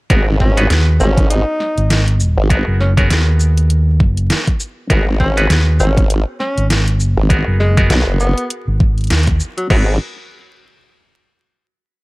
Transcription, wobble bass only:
0.10 G#1
1.00 G#1
2.37 G#1
4.90 G#1
5.80 G#1
7.17 G#1
7.90 B1
8.07 F#1
9.70 G#1

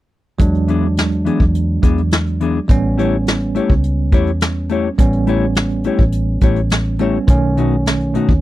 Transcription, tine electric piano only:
0.39 F#3 G#3 D4
2.68 G3 B3 C#4
4.98 G3 B3 C#4
7.00 G3 B3 C#4
7.27 D#3 A3 C#4

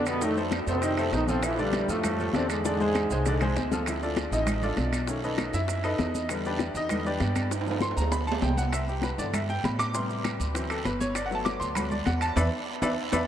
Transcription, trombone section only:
0.07 B2 B3
0.23 A2 A3
0.68 C3 C4
1.13 D#3 D#4
1.29 C3 C4
1.43 E3 E4
1.59 G2 G3
1.89 A2 A3
2.35 C3 C4
2.50 G#2 G#3

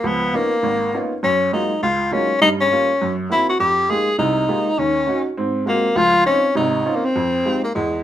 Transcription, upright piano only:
0.04 C#2 F3
0.34 A#3 B3 C#4 D#4 F4
0.63 G#1
0.93 A#3 B3 C#4 D#4 F4
1.23 F#2
1.52 F#3 G#3 A#3 D#4 F4
1.83 C#2
2.11 F#3 G#3 A#3 D#4 F4
2.41 G2 G3
2.71 G3 A#3 F4
3.02 F#2
3.30 A#3 C4 E4 F#4
3.60 F2
3.89 G#3 A#3 D#4 F4 G4
4.18 C2 C3
4.49 G#3 A#3 D#4 F4 G4
4.78 D#2 D#3
5.07 C#4 D#4 F#4
5.37 G#2 C4
5.66 G#3 A#3 C4 F4 F#4
5.96 C#2 F3
6.25 C4 C#4 D#4 F4
6.55 G#1 C3
6.85 C4 C#4 D#4 F4
7.16 F2
7.45 G#3 D#4 F4 G4
7.76 E2

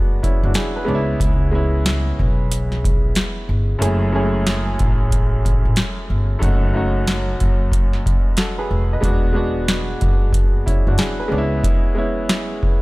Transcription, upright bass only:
Already playing: F#1
0.43 F#1
0.88 C#2
1.20 C#2
2.20 B1
3.49 G1
3.81 F#1
4.80 A1
5.65 A1
6.10 G1
6.42 F#1
7.41 F#1
8.71 F1
9.03 E1
10.02 F#1
10.87 F#1
11.32 C#2

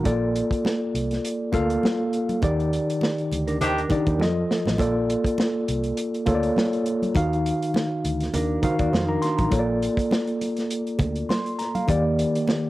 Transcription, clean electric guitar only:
3.47 D4 A#4
3.61 D#4 C5
3.77 D4 A#4
8.34 D4 A#4
8.64 D#4 C5
8.79 F#4 D5
8.92 D#4 C5
9.08 D4 A#4

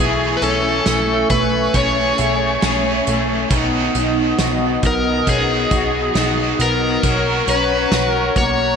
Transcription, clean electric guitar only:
Already playing: E3
0.42 C#4
1.30 A3
1.74 C#4
2.18 G#4
2.63 C#4
3.07 A3
3.51 D#3
3.95 D#4
4.39 F#4
4.83 B3
5.27 C#4
5.49 D#4
5.71 F#4
6.16 D#4
6.60 B3
7.48 C#4
7.92 F#4
8.36 A#3

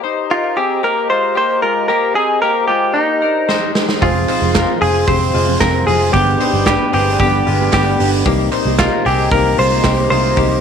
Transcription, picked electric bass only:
4.02 F1
4.42 F1
4.82 F1
5.08 F1
5.35 F1
5.61 F1
5.87 F1
6.14 G1
6.53 G1
6.94 G1
7.20 G1
7.47 G1
7.73 G1
8.00 G1
8.26 C2
8.65 C2
9.06 C2
9.32 C2
9.58 C2
9.84 C2
10.11 C2
10.37 C2

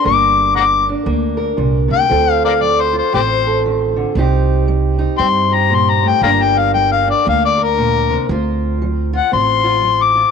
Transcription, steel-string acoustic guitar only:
0.04 G2 A#3 D4 A#4
0.55 G3
0.89 D4
1.06 D3 A#3
1.37 A#4
1.57 A#2
1.88 C3
2.09 D3 C4 F4 A4
2.61 F#3
2.93 F4
3.12 A2 C4
3.47 A4
3.66 D#3
3.96 D3
4.16 C3 C4 D#4 G4
4.68 G3
4.98 D#4
5.19 G2 C4
5.51 G4
5.70 A#2
6.03 A2
6.22 G2 A#3 D4 A#4
6.75 G3
7.07 D4
7.25 D3 A#3
7.58 A#4
7.78 A#2
8.10 C3
8.30 D3 C4 F4
8.82 F#3
9.13 F4
9.32 A2 C4
9.64 F4
9.82 F#3
10.15 F4

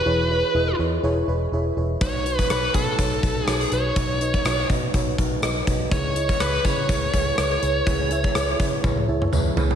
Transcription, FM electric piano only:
Already playing: E3 E4 G#4 B4 C#5 E5
0.06 E3 E4 G#4 B4 C#5
0.30 E4 G#4 B4 C#5
0.54 E4 G#4 B4 D#5
0.79 E4 G#4 B4 C#5
1.03 E4 G#4 B4 C#5
1.28 E4 G#4 B4 C#5 B5
1.53 E4 G#4 B4 C#5 E5
1.77 E4 G#4 B4 C#5
2.01 B2 D#4 F#4 B4 C#5
2.25 D#4 F#4 B4 C#5
2.50 D#4 F#4 C#5
2.74 D#4 F#4 B4 C#5
2.98 D#4 F#4 B4 C#5
3.23 D#4 F#4 B4 C#5
3.47 D#4 F#4 B4 C#5
3.71 D#4 F#4 B4 C#5
3.96 B2 D#4 F#4 B4 C#5
4.21 D#4 F#4 B4 D#5
4.46 D#4 F#4 B4 C#5
4.70 D#4 F#4 B4 D#5
4.94 D#4 F#4 B4 C#5
5.19 D#4 F#4 B4 C#5
5.42 D#4 F#4 B4 D#5
5.67 D#4 F#4 B4 C#5
5.91 C#3 E4 G#4 B4 C#5
6.16 E4 G#4 B4 D#5
6.40 E4 G#4 B4 C#5
6.65 E4 G#4 B4 C#5
6.89 E4 G#4 B4 C#5
7.14 E4 G#4 B4 C#5
7.38 E4 G#4 B4 C#5
7.62 E4 G#4 B4 C#5
7.87 C#3 E4 G#4 B4 C#5
8.11 E4 G#4 B4 E5
8.35 E4 G#4 B4 C#5
8.60 E4 G#4 B4 C#5
8.83 E4 G#4 B4 C#5
9.08 E4 G#4 B4 E5 A5
9.32 E4 G#4 B4 C#5 G#5
9.56 E4 G#4 B4 C#5 B5

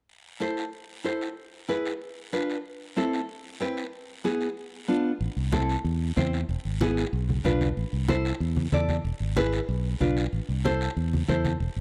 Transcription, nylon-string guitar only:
0.40 E4 A4 C5
1.04 E4 A4 C5
1.68 E4 G#4 B4
2.33 D4 F4 B4
2.96 C4 E4 A4
3.60 C4 E4 B4
4.24 B3 E4 G#4
4.88 B3 D4 F4
5.52 C4 E4 A4
6.16 C4 E4 C5
6.81 B3 E4 G#4
7.44 D4 F4 B4
8.08 E4 A4 C5
8.72 E4 A4 D5
9.36 E4 G#4 B4
10.00 D4 F4 B4
10.64 E4 A4 C5
11.28 E4 A4 C5

